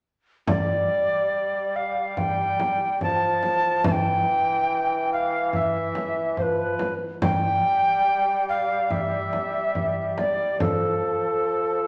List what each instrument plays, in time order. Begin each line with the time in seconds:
0.47 bassoon G3, recorder D5, frame drum
1.76 recorder F5
2.17 recorder G5, frame drum
2.60 frame drum
3.01 bassoon F3, recorder A5, frame drum
3.43 frame drum
3.84 bassoon E3, recorder A5, frame drum
3.92 recorder G5
5.13 recorder F5
5.53 recorder E5, frame drum
5.95 frame drum
6.37 bassoon F3, recorder C5, frame drum
6.42 recorder B4
6.79 frame drum
7.22 bassoon G3, recorder G5, frame drum
8.49 recorder F5
8.90 recorder E5, frame drum
9.33 frame drum
9.75 frame drum
10.18 recorder D5, frame drum
10.60 bassoon F3, recorder A4, frame drum